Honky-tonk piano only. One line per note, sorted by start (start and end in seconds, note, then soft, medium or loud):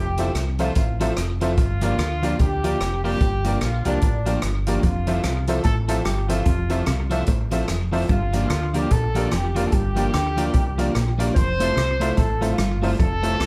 0.19 0.31 F4 medium
0.19 0.31 A4 medium
0.19 0.31 C5 medium
0.19 0.31 E5 loud
0.59 0.72 F4 loud
0.59 0.72 A4 medium
0.59 0.72 C5 medium
0.59 0.72 E5 loud
0.77 0.81 C5 soft
0.77 0.81 E5 soft
1.00 1.13 F4 medium
1.00 1.13 A4 medium
1.00 1.13 C5 medium
1.00 1.13 E5 loud
1.41 1.54 F4 medium
1.41 1.54 A4 medium
1.41 1.54 C5 medium
1.41 1.54 E5 loud
1.82 1.94 F4 medium
1.82 1.94 G4 medium
1.82 1.94 A#4 medium
1.82 1.95 D5 medium
2.23 2.35 F4 loud
2.23 2.35 G4 medium
2.23 2.35 A#4 medium
2.23 2.36 D5 loud
2.40 2.44 A#4 soft
2.40 2.44 D5 soft
2.64 2.76 F4 medium
2.64 2.76 G4 medium
2.64 2.76 A#4 medium
2.64 2.76 D5 loud
3.04 3.16 F4 medium
3.04 3.17 G4 medium
3.04 3.17 A#4 medium
3.04 3.17 D5 loud
3.44 3.57 F4 medium
3.44 3.57 G4 medium
3.44 3.58 A#4 medium
3.44 3.58 D5 medium
3.85 3.98 F4 loud
3.85 3.98 G4 medium
3.85 3.98 A#4 medium
3.85 3.98 D5 loud
4.02 4.07 A#4 soft
4.02 4.07 D5 soft
4.26 4.38 F4 medium
4.26 4.39 G4 medium
4.26 4.39 A#4 medium
4.26 4.39 D5 medium
4.67 4.79 F4 medium
4.67 4.80 G4 medium
4.67 4.80 A#4 medium
4.67 4.80 D5 loud
5.07 5.20 F4 medium
5.07 5.20 A4 medium
5.07 5.20 C5 medium
5.07 5.20 E5 medium
5.48 5.61 F4 medium
5.48 5.61 A4 loud
5.48 5.61 C5 medium
5.48 5.61 E5 loud
5.65 5.70 C5 soft
5.65 5.70 E5 soft
5.88 6.02 F4 medium
5.88 6.01 A4 medium
5.88 6.02 C5 medium
5.88 6.02 E5 loud
6.29 6.42 F4 loud
6.29 6.42 A4 medium
6.29 6.42 C5 medium
6.29 6.43 E5 loud
6.70 6.83 F4 medium
6.70 6.83 A4 medium
6.70 6.83 C5 medium
6.70 6.83 E5 medium
7.10 7.24 F4 loud
7.10 7.24 A4 medium
7.10 7.24 C5 medium
7.10 7.24 E5 loud
7.28 7.33 C5 soft
7.28 7.33 E5 soft
7.52 7.65 F4 loud
7.52 7.65 A4 medium
7.52 7.65 C5 medium
7.52 7.65 E5 loud
7.92 8.05 F4 medium
7.92 8.05 A4 medium
7.92 8.06 C5 medium
7.92 8.06 E5 loud
8.33 8.46 F4 medium
8.33 8.46 G4 medium
8.33 8.46 A#4 medium
8.33 8.47 D5 medium
8.74 8.87 F4 medium
8.74 8.87 G4 medium
8.74 8.87 A#4 medium
8.74 8.88 D5 loud
8.91 8.96 A#4 soft
8.91 8.96 D5 soft
9.15 9.28 F4 medium
9.15 9.28 G4 medium
9.15 9.28 A#4 medium
9.15 9.29 D5 loud
9.56 9.69 F4 medium
9.56 9.69 G4 medium
9.56 9.69 A#4 medium
9.56 9.69 D5 loud
9.96 10.09 F4 medium
9.96 10.09 G4 medium
9.96 10.10 A#4 medium
9.96 10.10 D5 medium
10.37 10.50 F4 loud
10.37 10.50 G4 loud
10.37 10.50 A#4 medium
10.37 10.51 D5 loud
10.54 10.59 A#4 soft
10.54 10.59 D5 soft
10.78 10.91 F4 loud
10.78 10.91 G4 medium
10.78 10.92 A#4 medium
10.78 10.92 D5 loud
11.19 11.32 F4 medium
11.19 11.32 G4 medium
11.19 11.32 A#4 medium
11.19 11.32 D5 loud
11.60 11.73 F4 medium
11.60 11.73 A4 medium
11.60 11.73 C5 medium
11.60 11.73 E5 medium
12.01 12.13 F4 medium
12.01 12.13 A4 medium
12.01 12.14 C5 loud
12.01 12.14 E5 loud
12.18 12.23 C5 soft
12.18 12.23 E5 soft
12.41 12.54 F4 medium
12.41 12.54 A4 medium
12.41 12.54 C5 medium
12.41 12.55 E5 loud
12.82 12.95 F4 medium
12.82 12.95 A4 medium
12.82 12.96 C5 medium
12.82 12.96 E5 loud
13.23 13.36 F4 medium
13.23 13.36 A4 medium
13.23 13.36 C5 medium
13.23 13.36 E5 medium